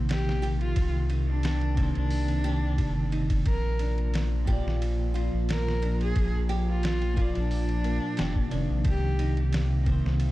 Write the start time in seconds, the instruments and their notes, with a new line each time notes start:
Already playing: analog synth bass A#1, clean electric guitar C3 D#3 A#3 C5, ambient pad C3 D#3 A#3, nylon-string guitar C4
0.09 cello G4, snare, ride
0.29 snare
0.42 nylon-string guitar G4, ride
0.61 cello F4, ride
0.76 analog synth bass C2, ambient pad C4, kick, ride
1.10 nylon-string guitar D#4, ride
1.29 cello D4
1.43 snare, ride
1.61 ride
1.75 clean electric guitar C3 A#3, nylon-string guitar C4, kick, ride
1.80 clean electric guitar D#3 C5
1.95 analog synth bass C2, cello D4, ride
2.11 open hi-hat
2.28 ride
2.44 nylon-string guitar G4, ride
2.78 analog synth bass G1, kick, ride
3.12 nylon-string guitar D#4, ride
3.30 kick, ride
3.46 analog synth bass A#1, ambient pad F3 A#3 F4, cello A#4, kick, ride
3.79 nylon-string guitar D4, ride
3.98 ride
4.14 snare, ride
4.45 clean electric guitar A#2 A#3, nylon-string guitar G4, kick, ride
4.50 clean electric guitar F4 D5
4.66 analog synth bass A#1, snare
4.82 ride
5.14 nylon-string guitar F4, ride
5.33 analog synth bass A#1
5.49 cello A#4, snare, ride
5.68 snare
5.82 nylon-string guitar D4, ride
6.01 cello G#4, ride
6.16 analog synth bass A#1, kick, ride
6.49 nylon-string guitar G4, ride
6.69 cello F4
6.83 snare, ride
7.02 ride
7.14 clean electric guitar A#2 A#3, nylon-string guitar F4, kick, ride
7.19 clean electric guitar F4 D5
7.35 analog synth bass A#1, cello D4, ride
7.51 open hi-hat
7.69 ride
7.84 nylon-string guitar A#3, ride
8.17 analog synth bass F1, nylon-string guitar G4, snare, ride
8.36 kick
8.49 analog synth bass F1, clean electric guitar C3 A#3, nylon-string guitar D4, ride
8.54 clean electric guitar D#3
8.70 analog synth bass A#1
8.85 analog synth bass C2, ambient pad C3 D#3, cello G4, kick, ride
9.19 nylon-string guitar D#4, ride
9.37 ride
9.53 snare, ride
9.84 clean electric guitar C3 A#3, nylon-string guitar C4, kick, ride
9.89 clean electric guitar D#3 C5
10.05 analog synth bass C2, snare
10.20 ride